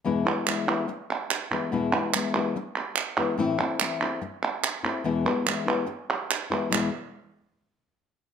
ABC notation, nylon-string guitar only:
X:1
M:4/4
L:1/8
Q:1/4=144
K:E
V:1 name="Nylon-string guitar"
[E,,B,,E,G,B,E] [E,G,B,E] [E,G,B,E] [E,G,B,E] z3 [E,G,B,E] | [E,,B,,E,G,B,E] [E,G,B,E] [E,G,B,E] [E,G,B,E] z3 [E,G,B,E] | [A,,E,A,=CE] [A,CE] [E,A,CE] [A,CE] z3 [A,CE] | [E,,B,,E,G,B,E] [E,G,B,E] [E,G,B,E] [E,G,B,E] z3 [E,G,B,E] |
[E,,B,,E,G,B,E] z6 z |]